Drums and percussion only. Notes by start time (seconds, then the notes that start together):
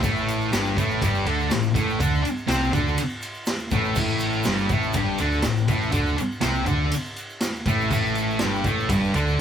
0.03 kick, ride, shaker
0.17 shaker
0.28 ride, shaker
0.41 shaker
0.53 snare, ride, shaker
0.65 shaker
0.77 kick, ride, shaker
0.90 shaker
1.02 kick, ride, shaker
1.15 shaker
1.26 ride
1.40 shaker
1.51 snare, ride, shaker
1.63 shaker
1.75 kick, ride, shaker
1.89 shaker
2.00 kick, ride, shaker
2.14 shaker
2.25 ride, shaker
2.38 shaker
2.48 snare, ride, shaker
2.64 shaker
2.73 kick, ride, shaker
2.87 shaker
2.98 ride, shaker
3.10 shaker
3.22 ride, shaker
3.34 shaker
3.46 snare, ride, shaker
3.59 shaker
3.71 kick, ride, shaker
3.84 shaker
3.95 kick, crash, shaker
4.08 shaker
4.19 ride, shaker
4.32 shaker
4.43 snare, ride, shaker
4.58 shaker
4.69 kick, ride, shaker
4.83 shaker
4.93 kick, ride, shaker
5.18 ride, shaker
5.32 shaker
5.42 snare, ride, shaker
5.57 shaker
5.68 kick, ride, shaker
5.83 shaker
5.92 kick, ride, shaker
6.07 shaker
6.18 ride, shaker
6.32 shaker
6.41 snare, ride, shaker
6.55 shaker
6.66 kick, ride, shaker
6.91 ride, shaker
7.05 shaker
7.16 ride, shaker
7.30 shaker
7.40 snare, ride, shaker
7.55 shaker
7.66 kick, ride, shaker
7.81 shaker
7.90 kick, crash, shaker
8.06 shaker
8.15 ride, shaker
8.30 shaker
8.39 snare, ride, shaker
8.55 shaker
8.64 kick, ride, shaker
8.80 shaker
8.89 kick, ride, shaker
9.04 shaker
9.14 ride, shaker
9.28 shaker